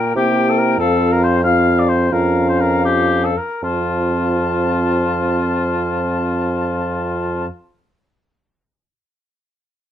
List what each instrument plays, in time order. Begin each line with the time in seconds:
Already playing: bassoon A#2, french horn A#3, clarinet F4, oboe A#4, flute G5
0.15 bassoon C3, french horn A#3, clarinet E4, oboe G4, flute G5
0.49 oboe A4
0.58 oboe A#4
0.79 bassoon F2, french horn C4, clarinet F4, oboe A4, flute F5
1.12 oboe A#4
1.23 oboe C5
1.43 french horn C4, clarinet F4, oboe F5, flute F5
1.79 oboe D5
1.88 oboe C5
2.11 bassoon F2, french horn C#4, clarinet F4, oboe A#4, flute F5
2.49 oboe C5
2.60 oboe A#4
2.85 oboe G4
3.24 oboe A4
3.37 oboe A#4
3.62 bassoon F2, french horn C4, clarinet F4, oboe F4, flute A5